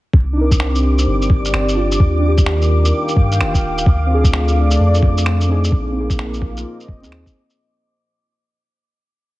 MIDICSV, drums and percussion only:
0, 0, Header, 1, 2, 480
1, 0, Start_track
1, 0, Key_signature, -3, "minor"
1, 0, Tempo, 465116
1, 146, Time_signature, 4, 2, 24, 8
1, 9690, End_track
2, 0, Start_track
2, 0, Title_t, "Drums"
2, 138, Note_on_c, 9, 36, 105
2, 241, Note_off_c, 9, 36, 0
2, 529, Note_on_c, 9, 36, 97
2, 532, Note_on_c, 9, 82, 55
2, 618, Note_on_c, 9, 26, 96
2, 632, Note_off_c, 9, 36, 0
2, 636, Note_off_c, 9, 82, 0
2, 722, Note_off_c, 9, 26, 0
2, 777, Note_on_c, 9, 82, 31
2, 880, Note_off_c, 9, 82, 0
2, 1017, Note_on_c, 9, 82, 53
2, 1120, Note_off_c, 9, 82, 0
2, 1258, Note_on_c, 9, 82, 31
2, 1340, Note_on_c, 9, 36, 97
2, 1361, Note_off_c, 9, 82, 0
2, 1443, Note_off_c, 9, 36, 0
2, 1498, Note_on_c, 9, 82, 55
2, 1587, Note_on_c, 9, 26, 97
2, 1601, Note_off_c, 9, 82, 0
2, 1690, Note_off_c, 9, 26, 0
2, 1739, Note_on_c, 9, 82, 42
2, 1843, Note_off_c, 9, 82, 0
2, 1977, Note_on_c, 9, 82, 57
2, 2062, Note_on_c, 9, 36, 110
2, 2080, Note_off_c, 9, 82, 0
2, 2165, Note_off_c, 9, 36, 0
2, 2454, Note_on_c, 9, 36, 100
2, 2455, Note_on_c, 9, 82, 54
2, 2543, Note_on_c, 9, 26, 99
2, 2557, Note_off_c, 9, 36, 0
2, 2558, Note_off_c, 9, 82, 0
2, 2646, Note_off_c, 9, 26, 0
2, 2702, Note_on_c, 9, 82, 31
2, 2805, Note_off_c, 9, 82, 0
2, 2943, Note_on_c, 9, 82, 55
2, 3046, Note_off_c, 9, 82, 0
2, 3183, Note_on_c, 9, 82, 31
2, 3265, Note_on_c, 9, 36, 101
2, 3286, Note_off_c, 9, 82, 0
2, 3369, Note_off_c, 9, 36, 0
2, 3426, Note_on_c, 9, 82, 56
2, 3514, Note_on_c, 9, 26, 102
2, 3529, Note_off_c, 9, 82, 0
2, 3618, Note_off_c, 9, 26, 0
2, 3657, Note_on_c, 9, 36, 61
2, 3660, Note_on_c, 9, 82, 43
2, 3760, Note_off_c, 9, 36, 0
2, 3763, Note_off_c, 9, 82, 0
2, 3902, Note_on_c, 9, 82, 57
2, 3987, Note_on_c, 9, 36, 119
2, 4005, Note_off_c, 9, 82, 0
2, 4090, Note_off_c, 9, 36, 0
2, 4377, Note_on_c, 9, 36, 101
2, 4383, Note_on_c, 9, 82, 53
2, 4474, Note_on_c, 9, 26, 105
2, 4480, Note_off_c, 9, 36, 0
2, 4486, Note_off_c, 9, 82, 0
2, 4577, Note_off_c, 9, 26, 0
2, 4626, Note_on_c, 9, 82, 31
2, 4729, Note_off_c, 9, 82, 0
2, 4859, Note_on_c, 9, 82, 54
2, 4962, Note_off_c, 9, 82, 0
2, 5103, Note_on_c, 9, 82, 31
2, 5186, Note_on_c, 9, 36, 108
2, 5206, Note_off_c, 9, 82, 0
2, 5289, Note_off_c, 9, 36, 0
2, 5341, Note_on_c, 9, 82, 56
2, 5429, Note_on_c, 9, 26, 103
2, 5444, Note_off_c, 9, 82, 0
2, 5532, Note_off_c, 9, 26, 0
2, 5582, Note_on_c, 9, 82, 42
2, 5685, Note_off_c, 9, 82, 0
2, 5823, Note_on_c, 9, 82, 57
2, 5904, Note_on_c, 9, 36, 117
2, 5926, Note_off_c, 9, 82, 0
2, 6007, Note_off_c, 9, 36, 0
2, 6295, Note_on_c, 9, 36, 106
2, 6300, Note_on_c, 9, 82, 52
2, 6388, Note_on_c, 9, 26, 103
2, 6398, Note_off_c, 9, 36, 0
2, 6403, Note_off_c, 9, 82, 0
2, 6492, Note_off_c, 9, 26, 0
2, 6541, Note_on_c, 9, 82, 30
2, 6623, Note_on_c, 9, 36, 62
2, 6645, Note_off_c, 9, 82, 0
2, 6726, Note_off_c, 9, 36, 0
2, 6782, Note_on_c, 9, 82, 52
2, 6885, Note_off_c, 9, 82, 0
2, 7021, Note_on_c, 9, 82, 30
2, 7103, Note_on_c, 9, 36, 107
2, 7124, Note_off_c, 9, 82, 0
2, 7206, Note_off_c, 9, 36, 0
2, 7262, Note_on_c, 9, 82, 54
2, 7348, Note_on_c, 9, 26, 103
2, 7365, Note_off_c, 9, 82, 0
2, 7452, Note_off_c, 9, 26, 0
2, 7494, Note_on_c, 9, 36, 61
2, 7500, Note_on_c, 9, 82, 44
2, 7597, Note_off_c, 9, 36, 0
2, 7603, Note_off_c, 9, 82, 0
2, 7740, Note_on_c, 9, 82, 54
2, 7844, Note_off_c, 9, 82, 0
2, 9690, End_track
0, 0, End_of_file